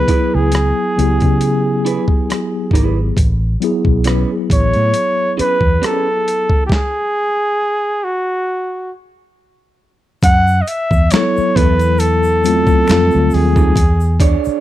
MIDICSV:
0, 0, Header, 1, 8, 480
1, 0, Start_track
1, 0, Tempo, 882353
1, 1723, Time_signature, 4, 2, 24, 8
1, 7944, End_track
2, 0, Start_track
2, 0, Title_t, "Flugelhorn"
2, 0, Program_c, 0, 56
2, 0, Note_on_c, 0, 71, 96
2, 189, Note_on_c, 0, 68, 75
2, 197, Note_off_c, 0, 71, 0
2, 1489, Note_off_c, 0, 68, 0
2, 2463, Note_on_c, 0, 73, 100
2, 2912, Note_off_c, 0, 73, 0
2, 2939, Note_on_c, 0, 71, 92
2, 3183, Note_on_c, 0, 69, 83
2, 3191, Note_off_c, 0, 71, 0
2, 3619, Note_off_c, 0, 69, 0
2, 3624, Note_on_c, 0, 67, 60
2, 3659, Note_on_c, 0, 68, 92
2, 3667, Note_off_c, 0, 67, 0
2, 4375, Note_on_c, 0, 66, 74
2, 4383, Note_off_c, 0, 68, 0
2, 4849, Note_off_c, 0, 66, 0
2, 5572, Note_on_c, 0, 78, 116
2, 5776, Note_on_c, 0, 75, 70
2, 5785, Note_off_c, 0, 78, 0
2, 5809, Note_on_c, 0, 76, 94
2, 5817, Note_off_c, 0, 75, 0
2, 6046, Note_on_c, 0, 73, 90
2, 6055, Note_off_c, 0, 76, 0
2, 6289, Note_on_c, 0, 71, 90
2, 6297, Note_off_c, 0, 73, 0
2, 6525, Note_on_c, 0, 69, 100
2, 6533, Note_off_c, 0, 71, 0
2, 7257, Note_on_c, 0, 68, 79
2, 7266, Note_off_c, 0, 69, 0
2, 7730, Note_off_c, 0, 68, 0
2, 7944, End_track
3, 0, Start_track
3, 0, Title_t, "Clean electric guitar"
3, 0, Program_c, 1, 27
3, 48, Note_on_c, 1, 64, 65
3, 55, Note_on_c, 1, 71, 74
3, 56, Note_on_c, 1, 68, 68
3, 269, Note_off_c, 1, 64, 0
3, 272, Note_off_c, 1, 71, 0
3, 273, Note_off_c, 1, 68, 0
3, 1007, Note_on_c, 1, 64, 57
3, 1010, Note_on_c, 1, 68, 60
3, 1016, Note_on_c, 1, 71, 62
3, 1108, Note_off_c, 1, 64, 0
3, 1110, Note_off_c, 1, 68, 0
3, 1113, Note_off_c, 1, 71, 0
3, 1488, Note_on_c, 1, 64, 72
3, 1491, Note_on_c, 1, 68, 80
3, 1494, Note_on_c, 1, 71, 74
3, 1617, Note_off_c, 1, 64, 0
3, 1619, Note_off_c, 1, 68, 0
3, 1620, Note_off_c, 1, 71, 0
3, 2205, Note_on_c, 1, 61, 71
3, 2209, Note_on_c, 1, 68, 73
3, 2212, Note_on_c, 1, 71, 75
3, 2336, Note_off_c, 1, 61, 0
3, 2338, Note_off_c, 1, 68, 0
3, 2339, Note_off_c, 1, 71, 0
3, 2924, Note_on_c, 1, 61, 52
3, 2926, Note_on_c, 1, 68, 59
3, 2933, Note_on_c, 1, 71, 60
3, 3027, Note_off_c, 1, 61, 0
3, 3028, Note_off_c, 1, 68, 0
3, 3031, Note_off_c, 1, 71, 0
3, 3165, Note_on_c, 1, 61, 70
3, 3170, Note_on_c, 1, 68, 68
3, 3171, Note_on_c, 1, 71, 78
3, 3296, Note_off_c, 1, 61, 0
3, 3298, Note_off_c, 1, 68, 0
3, 3299, Note_off_c, 1, 71, 0
3, 6286, Note_on_c, 1, 59, 53
3, 6291, Note_on_c, 1, 64, 61
3, 6293, Note_on_c, 1, 69, 60
3, 6388, Note_off_c, 1, 59, 0
3, 6390, Note_off_c, 1, 64, 0
3, 6391, Note_off_c, 1, 69, 0
3, 7380, Note_on_c, 1, 69, 57
3, 7384, Note_on_c, 1, 67, 56
3, 7388, Note_on_c, 1, 63, 54
3, 7461, Note_off_c, 1, 69, 0
3, 7462, Note_off_c, 1, 67, 0
3, 7464, Note_off_c, 1, 63, 0
3, 7728, Note_on_c, 1, 62, 83
3, 7731, Note_on_c, 1, 68, 81
3, 7735, Note_on_c, 1, 73, 86
3, 7944, Note_off_c, 1, 62, 0
3, 7944, Note_off_c, 1, 68, 0
3, 7944, Note_off_c, 1, 73, 0
3, 7944, End_track
4, 0, Start_track
4, 0, Title_t, "Tine electric piano"
4, 0, Program_c, 2, 4
4, 0, Control_c, 2, 64, 127
4, 0, Note_on_c, 2, 54, 57
4, 0, Note_on_c, 2, 59, 54
4, 0, Note_on_c, 2, 64, 51
4, 0, Note_on_c, 2, 68, 63
4, 524, Note_off_c, 2, 54, 0
4, 524, Note_on_c, 2, 54, 60
4, 534, Note_off_c, 2, 59, 0
4, 534, Note_on_c, 2, 59, 54
4, 540, Note_off_c, 2, 64, 0
4, 540, Note_on_c, 2, 64, 53
4, 548, Note_on_c, 2, 67, 49
4, 575, Note_off_c, 2, 67, 0
4, 582, Note_off_c, 2, 68, 0
4, 582, Note_on_c, 2, 68, 64
4, 1201, Note_off_c, 2, 54, 0
4, 1206, Note_off_c, 2, 59, 0
4, 1209, Note_off_c, 2, 64, 0
4, 1230, Note_off_c, 2, 68, 0
4, 1731, Control_c, 2, 64, 0
4, 1827, Control_c, 2, 64, 127
4, 1961, Note_on_c, 2, 54, 66
4, 1968, Note_on_c, 2, 59, 63
4, 1974, Note_on_c, 2, 64, 63
4, 1981, Note_on_c, 2, 68, 70
4, 2256, Note_off_c, 2, 54, 0
4, 2259, Note_off_c, 2, 59, 0
4, 2262, Note_off_c, 2, 64, 0
4, 2266, Note_off_c, 2, 68, 0
4, 3651, Control_c, 2, 64, 0
4, 5664, Control_c, 2, 64, 127
4, 6049, Note_on_c, 2, 54, 66
4, 6056, Note_on_c, 2, 59, 62
4, 6064, Note_on_c, 2, 64, 61
4, 6071, Note_on_c, 2, 69, 71
4, 6222, Note_off_c, 2, 54, 0
4, 6226, Note_off_c, 2, 59, 0
4, 6230, Note_off_c, 2, 64, 0
4, 6234, Note_off_c, 2, 69, 0
4, 6766, Note_on_c, 2, 54, 72
4, 6772, Note_on_c, 2, 60, 63
4, 6779, Note_on_c, 2, 65, 61
4, 6787, Note_on_c, 2, 57, 76
4, 7004, Note_off_c, 2, 60, 0
4, 7005, Note_on_c, 2, 55, 62
4, 7011, Control_c, 2, 64, 0
4, 7011, Note_on_c, 2, 60, 59
4, 7014, Note_off_c, 2, 65, 0
4, 7020, Note_on_c, 2, 65, 58
4, 7028, Note_on_c, 2, 69, 68
4, 7112, Control_c, 2, 64, 127
4, 7298, Note_off_c, 2, 55, 0
4, 7301, Note_off_c, 2, 60, 0
4, 7305, Note_off_c, 2, 65, 0
4, 7309, Note_off_c, 2, 69, 0
4, 7442, Note_off_c, 2, 54, 0
4, 7453, Note_off_c, 2, 57, 0
4, 7491, Control_c, 2, 64, 0
4, 7586, Control_c, 2, 64, 127
4, 7944, End_track
5, 0, Start_track
5, 0, Title_t, "Fingered electric bass"
5, 0, Program_c, 3, 33
5, 189, Note_on_c, 3, 37, 71
5, 389, Note_off_c, 3, 37, 0
5, 535, Note_on_c, 3, 37, 63
5, 644, Note_off_c, 3, 37, 0
5, 670, Note_on_c, 3, 49, 76
5, 1075, Note_off_c, 3, 49, 0
5, 1480, Note_on_c, 3, 32, 73
5, 1687, Note_off_c, 3, 32, 0
5, 1728, Note_on_c, 3, 33, 92
5, 1932, Note_off_c, 3, 33, 0
5, 2099, Note_on_c, 3, 35, 74
5, 2304, Note_off_c, 3, 35, 0
5, 2454, Note_on_c, 3, 33, 78
5, 2564, Note_off_c, 3, 33, 0
5, 2590, Note_on_c, 3, 45, 74
5, 2676, Note_off_c, 3, 45, 0
5, 3056, Note_on_c, 3, 40, 70
5, 3148, Note_off_c, 3, 40, 0
5, 5569, Note_on_c, 3, 42, 109
5, 5772, Note_off_c, 3, 42, 0
5, 5940, Note_on_c, 3, 40, 82
5, 6030, Note_off_c, 3, 40, 0
5, 6295, Note_on_c, 3, 40, 83
5, 6988, Note_off_c, 3, 40, 0
5, 7015, Note_on_c, 3, 41, 99
5, 7125, Note_off_c, 3, 41, 0
5, 7152, Note_on_c, 3, 38, 84
5, 7237, Note_off_c, 3, 38, 0
5, 7258, Note_on_c, 3, 39, 83
5, 7457, Note_off_c, 3, 39, 0
5, 7490, Note_on_c, 3, 40, 106
5, 7807, Note_off_c, 3, 40, 0
5, 7944, End_track
6, 0, Start_track
6, 0, Title_t, "Muted clean electric guitar strokes"
6, 1252, Note_on_c, 9, 29, 40
6, 1306, Note_off_c, 9, 29, 0
6, 7944, End_track
7, 0, Start_track
7, 0, Title_t, "Muted fingered electric bass strokes"
7, 2934, Note_on_c, 9, 29, 38
7, 2989, Note_off_c, 9, 29, 0
7, 6191, Note_on_c, 9, 29, 46
7, 6246, Note_off_c, 9, 29, 0
7, 7871, Note_on_c, 9, 29, 45
7, 7926, Note_off_c, 9, 29, 0
7, 7944, End_track
8, 0, Start_track
8, 0, Title_t, "Drums"
8, 43, Note_on_c, 9, 36, 89
8, 46, Note_on_c, 9, 42, 59
8, 98, Note_off_c, 9, 36, 0
8, 100, Note_off_c, 9, 42, 0
8, 281, Note_on_c, 9, 42, 70
8, 298, Note_on_c, 9, 37, 102
8, 336, Note_off_c, 9, 42, 0
8, 353, Note_off_c, 9, 37, 0
8, 538, Note_on_c, 9, 42, 59
8, 592, Note_off_c, 9, 42, 0
8, 655, Note_on_c, 9, 42, 30
8, 663, Note_on_c, 9, 36, 76
8, 709, Note_off_c, 9, 42, 0
8, 718, Note_off_c, 9, 36, 0
8, 766, Note_on_c, 9, 42, 65
8, 820, Note_off_c, 9, 42, 0
8, 1013, Note_on_c, 9, 42, 61
8, 1067, Note_off_c, 9, 42, 0
8, 1130, Note_on_c, 9, 36, 75
8, 1185, Note_off_c, 9, 36, 0
8, 1253, Note_on_c, 9, 42, 60
8, 1261, Note_on_c, 9, 37, 82
8, 1307, Note_off_c, 9, 42, 0
8, 1315, Note_off_c, 9, 37, 0
8, 1474, Note_on_c, 9, 36, 84
8, 1497, Note_on_c, 9, 42, 53
8, 1528, Note_off_c, 9, 36, 0
8, 1551, Note_off_c, 9, 42, 0
8, 1723, Note_on_c, 9, 36, 97
8, 1728, Note_on_c, 9, 42, 64
8, 1777, Note_off_c, 9, 36, 0
8, 1782, Note_off_c, 9, 42, 0
8, 1969, Note_on_c, 9, 42, 58
8, 2023, Note_off_c, 9, 42, 0
8, 2093, Note_on_c, 9, 36, 78
8, 2147, Note_off_c, 9, 36, 0
8, 2199, Note_on_c, 9, 42, 72
8, 2217, Note_on_c, 9, 37, 101
8, 2254, Note_off_c, 9, 42, 0
8, 2271, Note_off_c, 9, 37, 0
8, 2448, Note_on_c, 9, 36, 92
8, 2454, Note_on_c, 9, 42, 62
8, 2502, Note_off_c, 9, 36, 0
8, 2509, Note_off_c, 9, 42, 0
8, 2576, Note_on_c, 9, 42, 32
8, 2630, Note_off_c, 9, 42, 0
8, 2685, Note_on_c, 9, 42, 72
8, 2740, Note_off_c, 9, 42, 0
8, 2934, Note_on_c, 9, 42, 62
8, 2988, Note_off_c, 9, 42, 0
8, 3050, Note_on_c, 9, 36, 77
8, 3104, Note_off_c, 9, 36, 0
8, 3171, Note_on_c, 9, 42, 64
8, 3179, Note_on_c, 9, 37, 84
8, 3225, Note_off_c, 9, 42, 0
8, 3233, Note_off_c, 9, 37, 0
8, 3415, Note_on_c, 9, 42, 53
8, 3470, Note_off_c, 9, 42, 0
8, 3533, Note_on_c, 9, 36, 82
8, 3588, Note_off_c, 9, 36, 0
8, 3642, Note_on_c, 9, 36, 98
8, 3655, Note_on_c, 9, 38, 77
8, 3696, Note_off_c, 9, 36, 0
8, 3709, Note_off_c, 9, 38, 0
8, 5563, Note_on_c, 9, 36, 111
8, 5563, Note_on_c, 9, 82, 61
8, 5568, Note_on_c, 9, 42, 75
8, 5617, Note_off_c, 9, 82, 0
8, 5618, Note_off_c, 9, 36, 0
8, 5622, Note_off_c, 9, 42, 0
8, 5698, Note_on_c, 9, 82, 44
8, 5752, Note_off_c, 9, 82, 0
8, 5806, Note_on_c, 9, 82, 47
8, 5807, Note_on_c, 9, 42, 64
8, 5860, Note_off_c, 9, 82, 0
8, 5862, Note_off_c, 9, 42, 0
8, 5934, Note_on_c, 9, 36, 89
8, 5943, Note_on_c, 9, 82, 42
8, 5988, Note_off_c, 9, 36, 0
8, 5998, Note_off_c, 9, 82, 0
8, 6041, Note_on_c, 9, 42, 78
8, 6048, Note_on_c, 9, 26, 61
8, 6048, Note_on_c, 9, 82, 58
8, 6058, Note_on_c, 9, 38, 108
8, 6096, Note_off_c, 9, 42, 0
8, 6102, Note_off_c, 9, 26, 0
8, 6102, Note_off_c, 9, 82, 0
8, 6113, Note_off_c, 9, 38, 0
8, 6186, Note_on_c, 9, 82, 41
8, 6240, Note_off_c, 9, 82, 0
8, 6289, Note_on_c, 9, 36, 105
8, 6295, Note_on_c, 9, 42, 65
8, 6343, Note_off_c, 9, 36, 0
8, 6349, Note_off_c, 9, 42, 0
8, 6416, Note_on_c, 9, 42, 34
8, 6420, Note_on_c, 9, 82, 48
8, 6470, Note_off_c, 9, 42, 0
8, 6475, Note_off_c, 9, 82, 0
8, 6521, Note_on_c, 9, 82, 64
8, 6527, Note_on_c, 9, 42, 77
8, 6575, Note_off_c, 9, 82, 0
8, 6581, Note_off_c, 9, 42, 0
8, 6655, Note_on_c, 9, 82, 47
8, 6710, Note_off_c, 9, 82, 0
8, 6768, Note_on_c, 9, 82, 50
8, 6776, Note_on_c, 9, 42, 72
8, 6823, Note_off_c, 9, 82, 0
8, 6830, Note_off_c, 9, 42, 0
8, 6891, Note_on_c, 9, 36, 90
8, 6893, Note_on_c, 9, 82, 42
8, 6945, Note_off_c, 9, 36, 0
8, 6947, Note_off_c, 9, 82, 0
8, 7004, Note_on_c, 9, 26, 53
8, 7004, Note_on_c, 9, 82, 48
8, 7014, Note_on_c, 9, 42, 70
8, 7023, Note_on_c, 9, 38, 95
8, 7059, Note_off_c, 9, 26, 0
8, 7059, Note_off_c, 9, 82, 0
8, 7069, Note_off_c, 9, 42, 0
8, 7077, Note_off_c, 9, 38, 0
8, 7133, Note_on_c, 9, 82, 41
8, 7187, Note_off_c, 9, 82, 0
8, 7237, Note_on_c, 9, 82, 46
8, 7258, Note_on_c, 9, 46, 46
8, 7291, Note_off_c, 9, 82, 0
8, 7312, Note_off_c, 9, 46, 0
8, 7376, Note_on_c, 9, 36, 96
8, 7379, Note_on_c, 9, 82, 45
8, 7431, Note_off_c, 9, 36, 0
8, 7434, Note_off_c, 9, 82, 0
8, 7483, Note_on_c, 9, 36, 109
8, 7486, Note_on_c, 9, 82, 60
8, 7490, Note_on_c, 9, 42, 74
8, 7538, Note_off_c, 9, 36, 0
8, 7540, Note_off_c, 9, 82, 0
8, 7544, Note_off_c, 9, 42, 0
8, 7618, Note_on_c, 9, 82, 46
8, 7672, Note_off_c, 9, 82, 0
8, 7723, Note_on_c, 9, 36, 95
8, 7726, Note_on_c, 9, 42, 69
8, 7728, Note_on_c, 9, 82, 50
8, 7777, Note_off_c, 9, 36, 0
8, 7781, Note_off_c, 9, 42, 0
8, 7783, Note_off_c, 9, 82, 0
8, 7859, Note_on_c, 9, 82, 41
8, 7914, Note_off_c, 9, 82, 0
8, 7944, End_track
0, 0, End_of_file